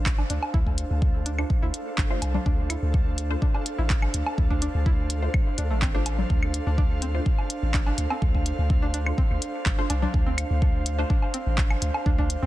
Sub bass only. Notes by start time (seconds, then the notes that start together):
Already playing: A1
0.30 D2
0.54 D2
0.90 D2
1.62 D2
1.98 A1
2.22 C2
2.46 D2
2.82 D2
3.79 A1
4.14 D2
4.38 D2
4.75 D2
5.58 D2
5.71 A1
6.30 D2
6.67 D2
7.63 A1
7.98 D2
8.22 D2
8.59 D2
9.31 D2
9.66 A1
9.90 C2
10.14 D2
10.50 D2
11.46 A1
11.82 D2
12.06 D2
12.42 D2